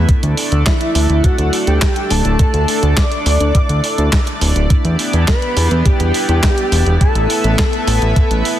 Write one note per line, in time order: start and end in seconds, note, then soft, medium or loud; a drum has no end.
0.00 4.66 E4 medium
0.09 4.66 A3 medium
0.09 4.66 D4 medium
0.09 4.66 A4 medium
0.09 6.97 D5 medium
0.09 kick loud
0.09 closed hi-hat medium
0.23 0.35 D2 medium
0.23 closed hi-hat soft
0.37 open hi-hat medium
0.52 0.64 D2 medium
0.52 closed hi-hat soft
0.66 1.25 E4 medium
0.66 1.26 E5 medium
0.66 kick loud
0.66 snare loud
0.66 clap loud
0.66 closed hi-hat medium
0.81 closed hi-hat soft
0.95 1.07 D2 medium
0.95 open hi-hat medium
1.10 1.22 D2 medium
1.10 closed hi-hat soft
1.24 1.67 F#4 loud
1.24 1.67 F#5 loud
1.24 kick loud
1.24 closed hi-hat medium
1.38 1.50 D2 medium
1.38 closed hi-hat soft
1.53 open hi-hat medium
1.67 1.79 D2 medium
1.67 2.12 G4 loud
1.67 2.12 G5 loud
1.67 closed hi-hat soft
1.82 kick loud
1.82 snare loud
1.82 clap loud
1.82 closed hi-hat medium
1.96 closed hi-hat soft
2.10 2.22 D1 loud
2.10 2.39 A4 loud
2.10 2.39 A5 loud
2.10 open hi-hat medium
2.25 2.37 D1 medium
2.25 closed hi-hat soft
2.39 2.99 A4 loud
2.39 2.99 A5 loud
2.39 kick loud
2.39 closed hi-hat medium
2.54 2.66 D2 medium
2.54 closed hi-hat soft
2.68 open hi-hat medium
2.83 2.95 D2 medium
2.83 closed hi-hat soft
2.97 4.41 D5 loud
2.97 4.41 D6 loud
2.97 kick loud
2.97 snare loud
2.97 clap loud
2.97 closed hi-hat medium
3.12 closed hi-hat soft
3.26 3.38 D2 loud
3.26 open hi-hat medium
3.40 3.52 D2 medium
3.40 closed hi-hat soft
3.55 kick loud
3.55 closed hi-hat medium
3.69 3.81 D2 medium
3.69 closed hi-hat soft
3.84 open hi-hat medium
3.98 4.10 D2 medium
3.98 closed hi-hat soft
4.13 kick loud
4.13 snare loud
4.13 clap loud
4.13 closed hi-hat medium
4.27 closed hi-hat soft
4.41 4.53 D1 loud
4.41 open hi-hat medium
4.56 4.68 D1 medium
4.56 closed hi-hat soft
4.70 6.99 B3 medium
4.70 6.99 D4 medium
4.70 8.60 E4 medium
4.70 6.99 G4 medium
4.70 kick loud
4.70 closed hi-hat medium
4.85 4.96 E2 medium
4.85 closed hi-hat soft
4.99 open hi-hat medium
5.13 5.25 E2 medium
5.13 closed hi-hat soft
5.28 5.87 B4 loud
5.28 5.87 B5 loud
5.28 kick loud
5.28 snare loud
5.28 clap loud
5.28 closed hi-hat medium
5.42 closed hi-hat soft
5.57 5.69 E2 medium
5.57 open hi-hat medium
5.71 5.83 E2 medium
5.71 closed hi-hat soft
5.85 7.00 G4 loud
5.85 7.00 G5 loud
5.85 kick loud
5.85 closed hi-hat medium
6.00 6.12 E2 medium
6.00 closed hi-hat soft
6.14 open hi-hat medium
6.29 6.41 E2 medium
6.29 closed hi-hat soft
6.43 kick loud
6.43 snare loud
6.43 clap loud
6.43 closed hi-hat medium
6.58 closed hi-hat soft
6.72 6.84 E1 loud
6.72 open hi-hat medium
6.86 6.98 E1 medium
6.86 closed hi-hat soft
7.01 8.60 A3 medium
7.01 8.60 B3 medium
7.01 7.55 A4 loud
7.01 8.60 B4 medium
7.01 8.60 E5 medium
7.01 7.55 A5 loud
7.01 kick loud
7.01 closed hi-hat medium
7.15 7.27 A1 medium
7.15 closed hi-hat soft
7.30 open hi-hat medium
7.44 7.56 A1 medium
7.44 closed hi-hat soft
7.58 8.41 A4 medium
7.58 kick loud
7.58 snare loud
7.58 clap medium
7.58 closed hi-hat medium
7.73 closed hi-hat soft
7.87 7.99 A1 loud
7.87 open hi-hat medium
8.02 8.14 A1 medium
8.02 closed hi-hat soft
8.16 kick loud
8.16 closed hi-hat medium
8.31 8.43 A1 medium
8.31 closed hi-hat soft
8.45 open hi-hat medium